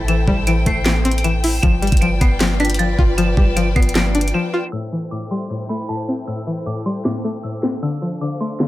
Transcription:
Already playing: A1 C4 E4 A4 C5 G5
0.08 E3 E7, closed hi-hat
0.28 A1 G3, kick
0.47 E3 D7, closed hi-hat
0.66 A1 A3 C7, kick, closed hi-hat
0.86 E3 D7, snare, clap, closed hi-hat
1.05 C4, closed hi-hat
1.11 closed hi-hat
1.18 closed hi-hat
1.24 E3 E7, closed hi-hat
1.44 E4, open hi-hat
1.63 G1 F3 F4 B4 D5 E7, kick, closed hi-hat
1.82 G3, closed hi-hat
1.87 closed hi-hat
1.92 G1, kick, closed hi-hat
1.97 closed hi-hat
2.01 F3 D7, closed hi-hat
2.21 G1 B3 C7, kick, closed hi-hat
2.40 F3, snare, clap, closed hi-hat
2.60 D4 B6, closed hi-hat
2.65 closed hi-hat
2.70 closed hi-hat
2.74 closed hi-hat
2.79 F3 A6, closed hi-hat
2.99 G1 F4, kick
3.18 F3 E7, closed hi-hat
3.37 G1 G3, kick
3.56 F3 D7, closed hi-hat
3.76 G1 B3 C7, kick, closed hi-hat
3.82 closed hi-hat
3.89 closed hi-hat
3.95 F3 D7, snare, clap, closed hi-hat
4.15 D4, closed hi-hat
4.21 closed hi-hat
4.28 closed hi-hat
4.34 F3 E7
4.54 F4
4.72 A2 E4 A4 C5 G5 E6
4.92 E3, closed hi-hat
4.99 closed hi-hat
5.05 closed hi-hat
5.11 A2 D6, closed hi-hat
5.18 closed hi-hat
5.24 closed hi-hat
5.31 G3 C6, closed hi-hat
5.50 A2, closed hi-hat
5.69 A3 B5, closed hi-hat
5.76 closed hi-hat
5.82 closed hi-hat
5.89 A2 A5, closed hi-hat
5.95 closed hi-hat
6.02 closed hi-hat
6.08 C4, closed hi-hat
6.27 A2 E6, closed hi-hat
6.47 E3, closed hi-hat
6.53 closed hi-hat
6.60 closed hi-hat
6.66 A2 D6, closed hi-hat
6.86 G3 C6, closed hi-hat
7.05 A2 D6, snare, clap, closed hi-hat
7.10 closed hi-hat
7.15 closed hi-hat
7.20 closed hi-hat
7.24 A3, closed hi-hat
7.43 A2 E6, closed hi-hat
7.63 C4, snare, clap, closed hi-hat
7.82 D3 D4 C5 F5 E6, closed hi-hat
8.02 F3, closed hi-hat
8.08 closed hi-hat
8.15 closed hi-hat
8.21 D3 D6, closed hi-hat
8.28 closed hi-hat
8.34 closed hi-hat
8.40 A3 C6, closed hi-hat
8.60 D3, snare, clap, closed hi-hat

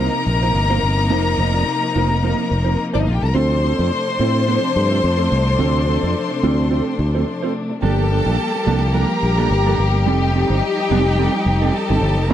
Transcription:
Already playing: C3 F3 A#3 D#4 A#4 A#5
0.00 D#4 F4 C5
0.14 muted clean electric guitar stroke
0.26 A#1, muted clean electric guitar stroke
0.43 A#3 D#4 F4 C5
0.54 G1, muted clean electric guitar stroke
0.70 A#3 D#4 F4 C5
0.82 G1, muted clean electric guitar stroke
0.98 muted clean electric guitar stroke
1.10 F1 A#3 D#4 F4 C5
1.38 F1 A#3 D#4 F4 C5
1.53 A#3 D#4 F4 D5
1.83 muted clean electric guitar stroke
1.96 F1 A#3 D#4 F4 C5
2.12 muted clean electric guitar stroke
2.23 A#3 D#4 F4 C5
2.39 muted clean electric guitar stroke
2.50 F1, muted clean electric guitar stroke
2.65 A#3 D#4 F4 C5
2.78 muted clean electric guitar stroke
2.94 G1 A#3 D4 D#4 F4 C5 D5
3.00 D#4 D#5
3.07 A#1 F4 F5, muted clean electric guitar stroke
3.14 G4 G5
3.22 C2 A4 A5, muted clean electric guitar stroke
3.27 A#4 A#5
3.34 D2 C3 F3 A3 C4 D4 F4 A4 C5 C6
3.63 C4 F4 A4 C5
3.79 F2 C4 F4 A4 C5
3.92 muted clean electric guitar stroke
4.08 muted clean electric guitar stroke
4.20 A2 C4 F4 A4 C5
4.36 muted clean electric guitar stroke
4.47 C4 F4 A4 C5
4.63 muted clean electric guitar stroke
4.76 G2, muted clean electric guitar stroke
4.90 C4 F4 A4 C5
5.03 F2, muted clean electric guitar stroke
5.17 C4 F4 A4 C5
5.31 C2, muted clean electric guitar stroke
5.47 muted clean electric guitar stroke
5.59 D2 C4 F4 A4 C5
5.86 C4 F4 A4 C5
6.03 F2 C4 F4 A4 D5
6.15 muted clean electric guitar stroke
6.30 muted clean electric guitar stroke
6.43 D2 C4 F4 A4 C5
6.58 muted clean electric guitar stroke
6.70 C4 F4 A4 C5
6.87 muted clean electric guitar stroke
6.99 D2, muted clean electric guitar stroke
7.15 C4 F4 A4 C5
7.28 muted clean electric guitar stroke
7.43 C4 F4 A4 C5
7.70 muted clean electric guitar stroke
7.82 G1 F3 G3 A#3 D4 G4 A4 A5
8.11 F3 A#3 D4 A4
8.26 A#1 F3 A#3 D4 A4
8.39 muted clean electric guitar stroke
8.54 muted clean electric guitar stroke
8.66 C2 F3 A#3 D4 A4
8.83 muted clean electric guitar stroke
8.93 F3 A#3 D4 A4 A#4 A#5
9.10 muted clean electric guitar stroke
9.23 A#1, muted clean electric guitar stroke
9.38 F3 A#3 D4 A4
9.51 G1, muted clean electric guitar stroke
9.66 F3 A#3 D4 A4
9.78 G1, muted clean electric guitar stroke
9.95 muted clean electric guitar stroke
10.06 F1 G3 C4 D#4 G4 A4 G5
10.35 G3 C4 D#4 A4
10.50 G1 G3 C4 D#4 C5
10.62 muted clean electric guitar stroke
10.79 muted clean electric guitar stroke
10.91 F1 G3 C4 D#4 A4
11.06 muted clean electric guitar stroke
11.18 G3 C4 D#4 A4
11.35 muted clean electric guitar stroke
11.46 F1, muted clean electric guitar stroke
11.62 G3 C4 D#4 A4
11.73 A4 A5, muted clean electric guitar stroke
11.89 G1 G3 C4 D#4 A4
12.01 G1, muted clean electric guitar stroke
12.17 F1, muted clean electric guitar stroke
12.28 G1 F3 G3 A#3 G4 A#4 A#5

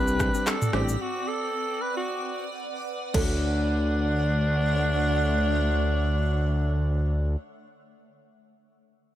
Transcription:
Already playing: C2 G3 C4 D4 G4 B4 D5 G5 D6
0.08 shaker
0.19 kick, cross-stick, shaker
0.34 G3 C4 D4 G4, shaker
0.47 A4, cross-stick, clap, shaker
0.62 mid tom, shaker
0.73 A1 G3 C4 D4 G4 A4 C5, cross-stick
0.89 shaker
1.00 F#4 B4 D5 F#5
1.28 A4
1.82 B4
1.97 F#4
3.14 D2 D3 A3 D4 F#4 A4 C#5 E5 F#5, kick, crash

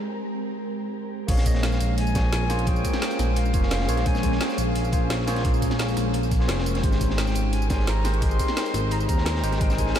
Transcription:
Already playing: G#3 C4 G4 A#4
1.27 A#1 G#3 A#3 C#4 F4 G#4 A#4 C5 C#5 F5, kick, closed hi-hat, crash
1.37 snare, tambourine
1.46 D#5, kick, closed hi-hat, tambourine
1.54 snare
1.63 F5, snare, closed hi-hat
1.72 snare, tambourine
1.80 A#1, closed hi-hat, tambourine
1.98 G#5, closed hi-hat
2.07 tambourine
2.14 A#3 F4 G#4 C5 C#5, kick, snare, closed hi-hat, tambourine
2.24 snare
2.33 A#1, snare, closed hi-hat
2.49 A#3 F4 G#4 C5 C#5, snare, closed hi-hat, tambourine
2.59 closed hi-hat
2.66 A#3 F4 G#4 C5 C#5 G5, kick, closed hi-hat
2.76 tambourine
2.85 kick, closed hi-hat, tambourine
2.93 snare
3.02 snare, closed hi-hat
3.11 closed hi-hat, tambourine
3.19 A#1, snare, closed hi-hat, tambourine
3.36 F5, closed hi-hat
3.45 tambourine
3.53 F1 A#3 F4 G#4 C5 C#5, kick, closed hi-hat, tambourine
3.63 snare
3.71 snare, closed hi-hat
3.80 snare
3.88 A#1 A#3 F4 G#4 C5 C#5, closed hi-hat, tambourine
3.97 snare, closed hi-hat
4.05 A#3 F4 G#4 C5 C#5 G#5, kick, closed hi-hat
4.15 snare, tambourine
4.23 kick, closed hi-hat, tambourine
4.32 snare
4.40 G5, snare, closed hi-hat
4.49 snare, tambourine
4.58 A#1 F5, closed hi-hat, tambourine
4.75 A#1, closed hi-hat
4.85 tambourine
4.92 A#3 F4 G#4 C5 C#5, kick, closed hi-hat, tambourine
5.10 snare, closed hi-hat
5.27 A#3 F4 G#4 C5 C#5, snare, closed hi-hat, tambourine
5.36 snare, closed hi-hat
5.43 A#3 F4 G#4 C5 C#5, kick, closed hi-hat
5.54 tambourine
5.62 kick, closed hi-hat, tambourine
5.71 snare
5.79 snare, closed hi-hat
5.88 closed hi-hat, tambourine
5.97 A#1, snare, closed hi-hat, tambourine
6.14 closed hi-hat
6.23 tambourine
6.31 kick, closed hi-hat, tambourine
6.39 A#3 F4 G#4 C5 C#5, snare
6.48 F1, snare, closed hi-hat
6.58 snare
6.66 closed hi-hat, tambourine
6.75 snare, closed hi-hat
6.82 G#1 G#3 C4 D#4 G4 A#4 C5, kick, closed hi-hat
6.92 snare, tambourine
7.01 kick, closed hi-hat, tambourine
7.10 snare
7.18 G5, snare, closed hi-hat
7.27 snare, tambourine
7.35 G#1, closed hi-hat, tambourine
7.53 G#5, closed hi-hat
7.62 tambourine
7.69 G#3 D#4 G4 A#4 C5 G#5, kick, snare, closed hi-hat, tambourine
7.79 snare
7.87 G#1 A#5, snare, closed hi-hat
8.04 G#3 D#4 G4 A#4 C5, snare, closed hi-hat, tambourine
8.14 C#6, closed hi-hat
8.21 G#3 D#4 G4 A#4 C5 C6, kick, closed hi-hat
8.31 tambourine
8.39 kick, closed hi-hat, tambourine
8.48 snare
8.57 snare, closed hi-hat
8.66 closed hi-hat, tambourine
8.74 G#1, snare, closed hi-hat, tambourine
8.91 A#5, closed hi-hat
8.99 C6, tambourine
9.06 D#2 G#3 D#4 G4 A#4 A#5, kick, closed hi-hat, tambourine
9.10 C5
9.18 snare
9.26 snare, closed hi-hat
9.35 snare
9.43 G#1 G#3 D#4 G4 A#4 C5, closed hi-hat, tambourine
9.52 snare, closed hi-hat
9.60 G3 G#3 D#4 A#4 C5 G5, kick, closed hi-hat
9.70 snare, tambourine
9.78 G#5, kick, closed hi-hat, tambourine
9.86 snare
9.95 snare, closed hi-hat

